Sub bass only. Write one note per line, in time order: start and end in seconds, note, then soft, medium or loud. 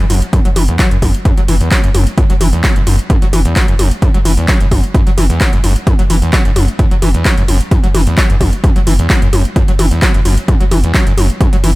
0.10 0.22 F#1 loud
0.45 0.55 F#1 medium
0.56 0.68 F#1 loud
0.91 1.02 F#1 medium
1.02 1.14 F#1 loud
1.37 1.48 F#1 medium
1.48 1.60 F#1 loud
1.84 1.94 F#1 medium
1.95 2.06 F#1 loud
2.30 2.40 F#1 medium
2.41 2.53 F#1 loud
2.76 2.86 F#1 medium
2.87 2.99 F#1 medium
3.22 3.32 F#1 medium
3.33 3.45 F#1 loud
3.68 3.79 F#1 medium
3.79 3.91 F#1 loud
4.14 4.25 F#1 medium
4.25 4.37 F#1 loud
4.61 4.71 F#1 medium
4.71 4.83 F#1 medium
5.07 5.17 F#1 medium
5.18 5.30 F#1 loud
5.53 5.63 F#1 medium
5.64 5.76 F#1 loud
5.99 6.09 F#1 medium
6.10 6.22 F#1 loud
6.45 6.55 F#1 medium
6.56 6.68 F#1 medium
6.91 7.02 F#1 medium
7.02 7.14 F#1 loud
7.37 7.48 F#1 medium
7.48 7.60 F#1 loud
7.84 7.94 F#1 medium
7.95 8.06 F#1 loud
8.30 8.40 F#1 medium
8.41 8.53 F#1 loud
8.76 8.86 F#1 medium
8.87 8.99 F#1 loud
9.22 9.32 F#1 medium
9.33 9.45 F#1 loud
9.68 9.79 F#1 medium
9.79 9.91 F#1 loud
10.14 10.25 F#1 medium
10.25 10.37 F#1 loud
10.60 10.71 F#1 medium
10.71 10.83 F#1 loud
11.07 11.17 F#1 medium
11.18 11.29 F#1 loud
11.53 11.63 F#1 medium
11.64 11.75 F#1 loud